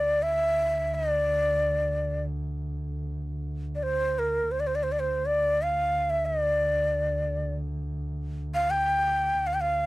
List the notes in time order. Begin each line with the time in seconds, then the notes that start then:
Already playing: D2 D5
0.23 E5
0.94 D5
3.75 D5
3.83 C5
4.19 A#4
4.51 D2 C5
4.60 D5
4.67 C5
4.75 D5
4.83 C5
4.92 D5
5.00 C5
5.26 D5
5.62 F5
6.10 E5
6.26 D5
8.54 F5
8.70 G5
9.41 D2
9.47 F5
9.54 G5
9.61 F5